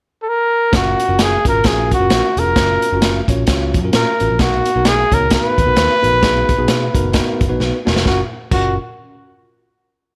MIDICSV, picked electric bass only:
0, 0, Header, 1, 2, 480
1, 0, Start_track
1, 0, Key_signature, 6, "major"
1, 0, Tempo, 458365
1, 764, Time_signature, 4, 2, 24, 8
1, 10631, End_track
2, 0, Start_track
2, 0, Title_t, "Picked electric bass"
2, 0, Program_c, 0, 34
2, 765, Note_on_c, 0, 30, 99
2, 975, Note_off_c, 0, 30, 0
2, 1140, Note_on_c, 0, 30, 82
2, 1426, Note_off_c, 0, 30, 0
2, 1522, Note_on_c, 0, 32, 79
2, 1672, Note_off_c, 0, 32, 0
2, 1724, Note_on_c, 0, 34, 87
2, 2009, Note_off_c, 0, 34, 0
2, 2099, Note_on_c, 0, 30, 82
2, 2176, Note_off_c, 0, 30, 0
2, 2200, Note_on_c, 0, 34, 79
2, 2306, Note_off_c, 0, 34, 0
2, 2480, Note_on_c, 0, 28, 85
2, 2556, Note_off_c, 0, 28, 0
2, 2581, Note_on_c, 0, 29, 96
2, 2657, Note_off_c, 0, 29, 0
2, 2680, Note_on_c, 0, 30, 93
2, 2891, Note_off_c, 0, 30, 0
2, 3063, Note_on_c, 0, 30, 91
2, 3347, Note_off_c, 0, 30, 0
2, 3438, Note_on_c, 0, 34, 75
2, 3589, Note_off_c, 0, 34, 0
2, 3637, Note_on_c, 0, 37, 91
2, 3922, Note_on_c, 0, 42, 89
2, 3938, Note_off_c, 0, 37, 0
2, 4071, Note_off_c, 0, 42, 0
2, 4128, Note_on_c, 0, 46, 94
2, 4230, Note_off_c, 0, 46, 0
2, 4411, Note_on_c, 0, 33, 84
2, 4481, Note_off_c, 0, 33, 0
2, 4510, Note_on_c, 0, 34, 86
2, 4581, Note_off_c, 0, 34, 0
2, 4598, Note_on_c, 0, 35, 96
2, 4808, Note_off_c, 0, 35, 0
2, 4983, Note_on_c, 0, 35, 84
2, 5266, Note_off_c, 0, 35, 0
2, 5353, Note_on_c, 0, 37, 79
2, 5609, Note_off_c, 0, 37, 0
2, 5841, Note_on_c, 0, 39, 78
2, 5914, Note_off_c, 0, 39, 0
2, 5936, Note_on_c, 0, 35, 81
2, 6011, Note_off_c, 0, 35, 0
2, 6040, Note_on_c, 0, 39, 86
2, 6143, Note_off_c, 0, 39, 0
2, 6321, Note_on_c, 0, 33, 80
2, 6394, Note_off_c, 0, 33, 0
2, 6413, Note_on_c, 0, 34, 82
2, 6489, Note_off_c, 0, 34, 0
2, 6895, Note_on_c, 0, 35, 91
2, 6970, Note_off_c, 0, 35, 0
2, 7000, Note_on_c, 0, 47, 88
2, 7208, Note_off_c, 0, 47, 0
2, 7273, Note_on_c, 0, 30, 83
2, 7528, Note_off_c, 0, 30, 0
2, 7758, Note_on_c, 0, 30, 84
2, 7832, Note_off_c, 0, 30, 0
2, 7855, Note_on_c, 0, 34, 89
2, 7930, Note_off_c, 0, 34, 0
2, 7959, Note_on_c, 0, 35, 78
2, 8063, Note_off_c, 0, 35, 0
2, 8244, Note_on_c, 0, 28, 81
2, 8316, Note_off_c, 0, 28, 0
2, 8340, Note_on_c, 0, 29, 83
2, 8413, Note_off_c, 0, 29, 0
2, 8436, Note_on_c, 0, 30, 96
2, 8593, Note_off_c, 0, 30, 0
2, 8916, Note_on_c, 0, 30, 87
2, 9178, Note_off_c, 0, 30, 0
2, 10631, End_track
0, 0, End_of_file